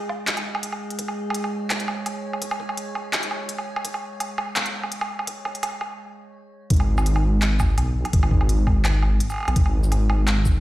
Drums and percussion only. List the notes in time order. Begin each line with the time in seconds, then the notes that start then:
0.09 kick, low woodblock
0.27 clap, closed hi-hat
0.37 closed hi-hat, low woodblock
0.55 low woodblock
0.63 closed hi-hat
0.73 low woodblock
0.90 closed hi-hat
0.99 kick, closed hi-hat
1.08 low woodblock
1.30 low woodblock
1.34 closed hi-hat
1.44 low woodblock
1.70 clap, closed hi-hat, low woodblock
1.80 closed hi-hat
1.88 low woodblock
2.06 closed hi-hat, low woodblock
2.33 low woodblock
2.42 kick, closed hi-hat
2.51 low woodblock
2.60 kick
2.69 low woodblock
2.77 closed hi-hat
2.95 kick, low woodblock
3.13 clap, closed hi-hat, low woodblock
3.23 closed hi-hat
3.31 low woodblock
3.49 closed hi-hat
3.58 low woodblock
3.76 low woodblock
3.85 kick, closed hi-hat
3.94 low woodblock
4.20 closed hi-hat, low woodblock
4.38 low woodblock
4.56 clap, closed hi-hat, low woodblock
4.66 closed hi-hat
4.84 low woodblock
4.92 closed hi-hat
5.01 low woodblock
5.19 low woodblock
5.27 kick, closed hi-hat
5.45 kick, low woodblock
5.55 closed hi-hat
5.63 closed hi-hat, low woodblock
5.81 kick, low woodblock
6.70 kick, closed hi-hat
6.74 closed hi-hat
6.76 closed hi-hat, low woodblock
6.98 low woodblock, shaker
7.06 closed hi-hat
7.16 low woodblock
7.42 clap, closed hi-hat, low woodblock
7.60 kick, low woodblock, shaker
7.78 closed hi-hat, low woodblock
8.05 closed hi-hat, low woodblock
8.13 kick, closed hi-hat
8.23 low woodblock
8.31 kick
8.41 low woodblock
8.49 closed hi-hat
8.67 kick, low woodblock
8.85 clap, closed hi-hat, low woodblock
9.02 low woodblock
9.20 closed hi-hat
9.30 low woodblock, shaker
9.32 low woodblock
9.34 low woodblock
9.36 low woodblock
9.38 low woodblock
9.40 low woodblock
9.43 low woodblock
9.45 closed hi-hat, low woodblock
9.48 low woodblock
9.56 kick, closed hi-hat
9.66 low woodblock
9.84 shaker
9.92 closed hi-hat, low woodblock
10.10 low woodblock
10.28 clap, closed hi-hat, low woodblock
10.45 kick, shaker